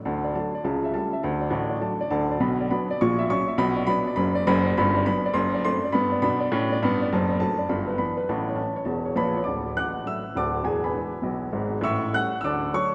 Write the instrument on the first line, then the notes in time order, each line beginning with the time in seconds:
upright piano
0.05 D2 D3 A5
0.24 D5
0.34 F#3 A3 D4 A5
0.55 D5
0.64 C#2 C#3 A5
0.84 E5
0.94 G3 A3 A5
1.13 E5
1.23 D2 D3 A5
1.41 D5
1.50 A1 A2 A5
1.70 D5
1.81 F#3 A3 D4 A5
2.01 D5
2.10 D2 D3 A5
2.31 D5
2.40 B1 B2 B5
2.61 D5
2.71 F#3 B3 D4 B5
2.91 D5
3.01 A#1 A#2 C#6
3.19 E5
3.30 F#3 C#4 C#6
3.48 E5
3.58 B1 B2 B5
3.76 D5
3.87 F#3 B3 D4 B5
4.07 D5
4.16 F#1 F#2 B5
4.35 D5
4.47 F#1 F#2 B5
4.66 D5
4.77 G1 G2 B5
4.97 D5
5.06 F#3 B3 D4 B5
5.26 D5
5.34 F#1 F#2 C6
5.54 D5
5.65 A3 C4 D4 C6
5.85 D5
5.92 G2 B3 B5
6.12 D5
6.22 B2 D4 B5
6.40 D5
6.52 A2 C#4 B5
6.72 D5
6.82 G2 B3 B5
7.02 D5
7.12 F#1 F#2 A5
7.32 D5
7.40 F#3 A3 D4 A5
7.59 D5
7.69 G1 G2 B5
7.87 B4
7.98 E3 B3 B5
8.17 B4
8.29 A1 A2 A5
8.49 C#5
8.56 E3 C#4 A5
8.76 C#5
8.85 E1 E2 A5
9.05 C#5
9.16 A#1 A#2 B4 A5 B5
9.37 C#5
9.44 D1 D5 A5 D6
9.48 D2
9.76 A1 F#5 D6 F#6
10.05 F#3 A3 D4 E5 E6
10.35 D1 D2 D5 A5 D6
10.63 E1 E2 G#4 G#5
10.84 B4 G#5 B5
10.93 E3 G#3 D4
11.22 B1 B2
11.53 G#1 G#2
11.81 A1 A2 E5 C#6 E6
12.13 G3 A3 C#4 F#5 F#6
12.41 D2 D3 D6 E6
12.46 D5 A5
12.73 F#3 A3 D4 C#5 C#6